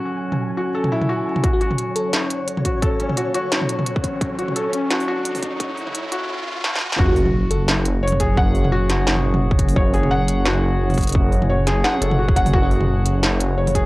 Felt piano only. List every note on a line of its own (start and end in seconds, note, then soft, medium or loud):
0.00 1.46 C#4 medium
0.00 0.57 F#4 medium
0.00 0.74 A4 medium
0.57 0.68 F#4 medium
0.74 0.90 A4 medium
0.92 1.08 E4 medium
1.09 1.26 F#4 medium
1.44 1.59 F#4 medium
1.61 1.72 F#4 loud
2.65 2.76 F#4 medium
2.82 2.98 A4 medium
3.00 3.16 C#4 medium
3.17 3.33 F#4 medium
3.35 3.45 F#4 loud
4.39 4.49 F#4 medium
4.56 4.72 A4 medium
4.73 4.90 C#4 medium
4.90 5.06 F#4 medium
5.08 5.19 F#4 loud
6.12 6.23 F#4 medium
6.99 7.15 F#4 loud
8.03 8.19 C#5 medium
8.20 8.36 G#4 loud
8.38 8.48 F#5 loud
8.72 8.89 F#4 loud
9.76 9.93 C#5 medium
9.94 10.09 G#4 loud
10.11 10.22 F#5 loud
10.45 10.62 F#4 loud
11.49 11.66 C#5 medium
11.67 11.83 G#4 loud
11.84 11.95 F#5 loud
12.02 12.18 A4 medium
12.19 12.35 F#4 medium
12.36 12.52 F#5 loud
12.54 12.70 F#4 loud
13.58 13.74 C#5 medium
13.75 13.86 G#4 loud